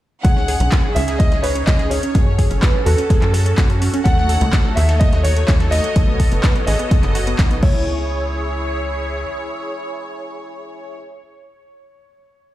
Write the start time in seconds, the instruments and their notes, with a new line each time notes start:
0.23 analog synth bass C#2, supersaw synth C#4 D#4 G#4, synth pluck G#4, violin section F#5, grand piano F#5, kick, closed hi-hat
0.36 synth pluck C#4, snare
0.48 synth pluck G#4, closed hi-hat, open hi-hat
0.60 analog synth bass B1, synth pluck C#4, closed hi-hat
0.72 synth pluck C#4, kick, snare, clap, closed hi-hat
0.84 synth pluck G#4
0.95 analog synth bass C#2, synth pluck C#4, violin section E5, grand piano E5, closed hi-hat, open hi-hat
1.08 synth pluck G#4, snare, closed hi-hat
1.18 synth pluck C#4, violin section D#5, grand piano D#5, kick, closed hi-hat
1.32 analog synth bass C#2, synth pluck C#4, snare, closed hi-hat
1.42 synth pluck B4, violin section C#5, grand piano C#5, closed hi-hat, open hi-hat
1.55 synth pluck C#4, closed hi-hat
1.66 analog synth bass C#2, grand piano D#5, violin section D#5, kick, snare, clap, closed hi-hat
1.79 synth pluck G#4, snare, closed hi-hat
1.90 synth pluck C#4, violin section C#5, grand piano C#5, closed hi-hat, open hi-hat
2.03 synth pluck C#4, closed hi-hat
2.15 analog synth bass F#2, supersaw synth C#4 F#4 A4, synth pluck G#4, kick, closed hi-hat
2.27 synth pluck C#4
2.38 synth pluck G#4, kick, closed hi-hat, open hi-hat
2.50 analog synth bass F#1, synth pluck C#4, closed hi-hat
2.61 synth pluck C#4, grand piano B4, violin section B4, kick, snare, clap, closed hi-hat
2.74 synth pluck C#4
2.85 analog synth bass E2, synth pluck F#4, violin section A4, grand piano A4, closed hi-hat, open hi-hat
2.98 synth pluck C#4, closed hi-hat
3.10 synth pluck G#4, kick, closed hi-hat
3.22 analog synth bass F#2, synth pluck C#4, clap, closed hi-hat
3.34 synth pluck A4, closed hi-hat, open hi-hat
3.46 synth pluck C#4, closed hi-hat
3.58 analog synth bass F#2, synth pluck F#4, kick, snare, clap, closed hi-hat
3.70 synth pluck C#4, closed hi-hat
3.82 synth pluck C#4, closed hi-hat, open hi-hat
3.93 synth pluck C#4, closed hi-hat
4.04 analog synth bass D#2, supersaw synth D#4 C#5, synth pluck A4, violin section F#5, grand piano F#5, kick, closed hi-hat
4.17 synth pluck A3, snare
4.29 synth pluck A4, closed hi-hat, open hi-hat
4.41 analog synth bass C#2, synth pluck A3, closed hi-hat
4.53 synth pluck A3, kick, snare, clap, closed hi-hat
4.65 synth pluck A4
4.75 analog synth bass D#2, synth pluck A3, violin section E5, grand piano E5, closed hi-hat, open hi-hat
4.89 synth pluck A4, snare, closed hi-hat
4.99 synth pluck A3, violin section D#5, grand piano D#5, kick, closed hi-hat
5.13 analog synth bass D#2, synth pluck A3, snare, closed hi-hat
5.23 grand piano C#5, violin section C#5, synth pluck C#5, closed hi-hat, open hi-hat
5.36 synth pluck A3, closed hi-hat
5.47 analog synth bass D#2, synth pluck A3, grand piano C#5, violin section C#5, kick, snare, clap, closed hi-hat
5.60 synth pluck A4, snare, closed hi-hat
5.71 synth pluck A3, grand piano D#5, violin section D#5, closed hi-hat, open hi-hat
5.84 synth pluck A3, closed hi-hat
5.96 analog synth bass B1, supersaw synth B3 A4 D#5, synth pluck A4, kick, closed hi-hat
6.08 synth pluck B3
6.20 synth pluck A4, kick, closed hi-hat, open hi-hat
6.32 analog synth bass F#1, synth pluck B3, closed hi-hat
6.42 synth pluck B3, grand piano B4, violin section B4, kick, snare, clap, closed hi-hat
6.55 synth pluck B3, closed hi-hat
6.66 analog synth bass A1, synth pluck G#4, grand piano D#5, violin section D#5, closed hi-hat, open hi-hat
6.79 synth pluck B3, closed hi-hat
6.91 synth pluck A4, kick, closed hi-hat
7.03 analog synth bass F#1, synth pluck B3, clap, closed hi-hat
7.15 synth pluck F#4, closed hi-hat, open hi-hat
7.27 synth pluck B3, closed hi-hat
7.39 analog synth bass B1, synth pluck D#4, kick, snare, clap, closed hi-hat
7.51 synth pluck B3, closed hi-hat
7.63 analog synth bass C#2, synth pluck E4, supersaw synth E4 G#4 C#5, grand piano C#5, violin section C#5, kick, crash